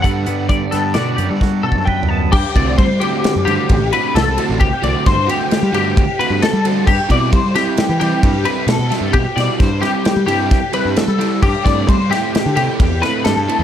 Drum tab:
CC |------------------------------|x-----------------------------|------------------------------|x-----------------------------|
RD |------------------------------|---x--x--x--x--x--x--x--x--x--|x--x--x--x--x--x--x--x--x--x--|---x--x--x--x--x--x--x--x--x--|
HH |x--x--x--x--x--x--------------|------------------------------|------------------------------|------------------------------|
SD |---------o--o-----o-----------|------------o-----------o-----|------o-----o-----------o-----|---------o--o-----------o--o--|
FT |--------------------------o---|------------------------------|------------------------------|------------------------------|
BD |o-----o-----------o---o-o-----|o--o--o-----------o-----------|o-----o-----------o-----------|o--o--o-----------o-----------|

CC |------------------------------|x-----------------------------|
RD |x--x--x--x--x--x--x--x--x--x--|---x--x--x--x--x--x--x--x--x--|
HH |------------------------------|------------------------------|
SD |---o--o--o--o-----o-----o-----|---o-----o--o--------o--o-----|
FT |------------------------------|------------------------------|
BD |o-----o-----------o-----------|o--o--o-----------o-----------|